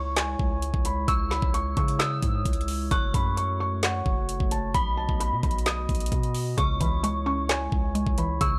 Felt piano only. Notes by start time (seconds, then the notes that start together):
Already playing: C#6
0.16 G#5
0.85 B5
1.08 C#6
1.31 B5
1.54 C#6
1.77 C#6
1.99 E6
2.92 F#6
3.14 B5
3.37 C#6
3.60 C#6
3.84 F#5
4.51 A5
4.74 B5
4.97 A5
5.20 B5
5.43 B5
5.66 D#6
6.58 C#6
6.80 B5
7.04 C#6
7.26 C#6
7.49 G#5
8.18 B5
8.41 C#6